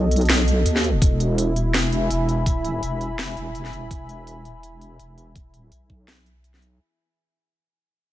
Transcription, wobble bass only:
Already playing: B1
0.66 D#2
1.02 E1
2.10 E1
2.83 E1
3.37 E1
3.73 E1
3.91 E1
4.99 E1
5.49 D#1

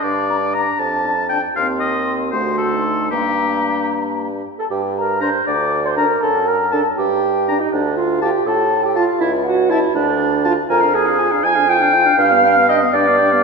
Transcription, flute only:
0.29 A#5
0.54 A#5
1.05 A5
1.31 A5
1.56 C6
2.33 C6
3.11 A#5
4.59 A5
4.70 G5
4.98 A#5
5.22 C6
5.47 D6
5.85 C6
5.95 A#5
6.21 A5
6.47 A#5
6.72 A5
6.95 G5
7.59 D#5
7.72 D5
7.97 F5
8.23 G5
8.46 A5
8.83 G5
8.95 F5
9.19 E5
9.44 F#5
9.69 E5
9.95 D5
10.70 A#5
10.95 G#5
11.43 G#6
11.68 G6
12.19 F6
12.69 D#6
12.94 D6

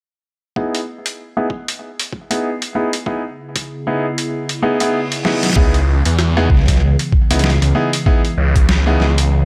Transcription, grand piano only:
0.56 B3 D#4 E4 G#4
1.37 B3 D#4 E4 G#4
2.31 B3 D#4 E4 G#4
2.75 B3 D#4 E4 G#4
3.06 B3 D#4 E4 G#4
3.87 B3 D#4 E4 G#4
4.63 B3 D#4 E4 G#4
4.81 B3 D#4 E4 G#4
5.25 B3 D#4 E4 G#4
5.56 B3 D#4 E4 G#4
6.37 B3 D#4 E4 G#4
7.31 B3 D#4 E4 G#4
7.75 B3 D#4 E4 G#4
8.06 B3 D#4 E4 G#4
8.87 B3 D#4 E4 G#4

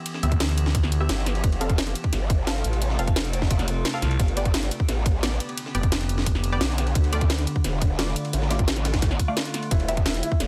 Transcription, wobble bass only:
1.09 G1
1.44 F1
2.13 G1
2.64 A1
2.99 F1
4.20 G1
4.88 A1
6.61 B1
6.95 D2
7.64 E1
8.33 A1
9.71 E1
10.40 F1

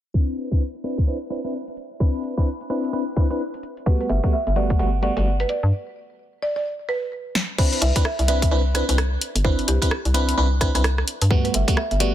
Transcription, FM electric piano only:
0.14 C4 D4 E4 B4
0.52 C4 D4 E4 B4
0.84 C4 D4 E4 B4
1.07 C4 D4 E4 B4
1.30 C4 D4 E4 B4
1.44 C4 D4 E4 B4
2.00 C4 D4 E4 B4
2.37 C4 D4 E4 B4
2.70 C4 D4 E4 B4
2.93 C4 D4 E4 B4
3.16 C4 D4 E4 B4
3.30 C4 D4 E4 B4
3.86 G3 A3 B3 F#4
4.24 G3 A3 B3 F#4
4.56 G3 A3 B3 F#4
4.79 G3 A3 B3 F#4
5.03 G3 A3 B3 F#4
5.17 G3 A3 B3 F#4
7.58 C4 D4 E4 B4
7.96 C4 D4 E4 B4
8.28 C4 D4 E4 B4
8.51 C4 D4 E4 B4
8.75 C4 D4 E4 B4
8.89 C4 D4 E4 B4
9.44 C4 D4 E4 B4
9.82 C4 D4 E4 B4
10.14 C4 D4 E4 B4
10.38 C4 D4 E4 B4
10.61 C4 D4 E4 B4
10.75 C4 D4 E4 B4
11.30 G3 A3 B3 F#4
11.68 G3 A3 B3 F#4
12.00 G3 A3 B3 F#4

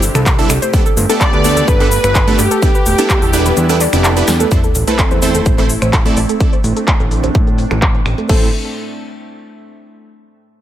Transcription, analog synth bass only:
0.15 C2
0.50 C2
0.97 G1
1.33 D2
1.68 G1
2.04 G1
2.39 G1
2.86 E1
3.22 E1
3.57 E2
3.93 F1
4.28 E2
4.75 A1
5.11 E2
5.46 A1
5.82 A1
6.17 A1
6.64 A1
7.00 A1
7.35 A2
7.71 A1
8.06 A1
8.29 A1

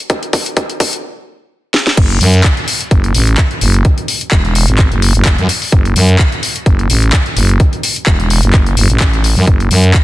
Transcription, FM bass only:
1.97 F#1
2.21 F#2
2.91 F#1
3.15 A1
3.61 F#1
4.32 E1
4.68 G#1
4.91 F#1
5.15 F#1
5.38 F#2
5.72 F#1
5.96 F#2
6.66 F#1
6.89 A1
7.36 F#1
8.07 E1
8.43 F#1
8.77 F#1
8.90 A1
9.37 F#2
9.47 F#1
9.71 F#2

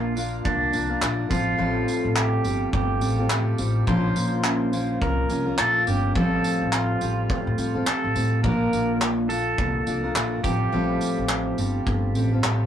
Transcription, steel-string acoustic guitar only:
Already playing: A#2 F3 A#3 D4 F4 A#4
0.15 A#3 D4 F4 A#4
0.72 A#3 D4 F4 A#4
0.89 A#3 D4 F4 A#4
1.01 A#3 D4 F4 A#4
1.29 G3 C4 F4 A4
1.58 A2 F3 G3 C4 F4 A4
2.44 G3 C4 F4 A4
3.01 G3 C4 F4 A4
3.18 G3 C4 F4 A4
3.29 G3 C4 F4 A4
3.58 G3 C4 F4 A4
3.87 A#2 F3 A#3 C#4 F4 A#4
4.72 A#3 C#4 F4 A#4
5.29 A#3 C#4 F4 A#4
5.46 A#3 C#4 F4 A#4
5.58 A#3 C#4 F4 A#4
5.86 A#3 C#4 F4 A#4
6.15 A2 F3 G3 C4 F4 A4
7.00 G3 C4 F4 A4
7.58 G3 C4 F4 A4
7.74 G3 C4 F4 A4
7.86 G3 F4
8.15 G3 C4 F4 A4
8.43 A#2 F3 A#3 D4 F4 A#4
9.29 A#3 D4 F4
9.86 A#3 D4 F4 A#4
10.03 A#3 D4 F4 A#4
10.15 A#3 D4 F4 A#4
10.43 G3 C4 F4 A4
10.72 A2 F3 G3 C4 F4 A4
11.58 G3 C4 F4 A4
12.15 G3 C4 F4 A4
12.32 G3 C4 F4 A4
12.44 G3 C4 F4 A4

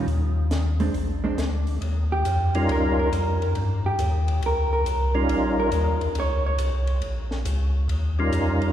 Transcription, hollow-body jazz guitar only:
0.80 G#3 C4 D4
1.24 G#3 C4 D4
2.12 G4
2.72 A#4
2.99 A#4
3.86 G4
4.46 A#4
4.73 A#4
5.60 A#4
6.20 C#5
6.46 C#5

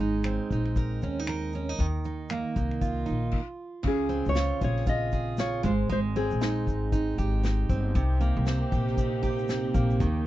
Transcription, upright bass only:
Already playing: G#1
0.50 A#1
1.02 D#2
1.79 D#2
2.56 C2
3.08 A#1
3.84 C#2
4.26 C#2
4.61 A#1
5.64 G#1
5.90 G#1
6.31 A#1
6.67 G#1
7.18 G#1
7.69 G1
7.95 C2
8.36 C2
8.72 A#1
9.74 A#1
10.00 D#2

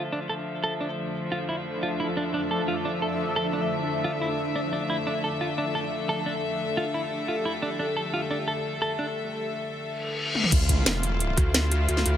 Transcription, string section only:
Already playing: D3 F3 A3 E5
5.07 A4
10.52 D3 A3 E4 F4

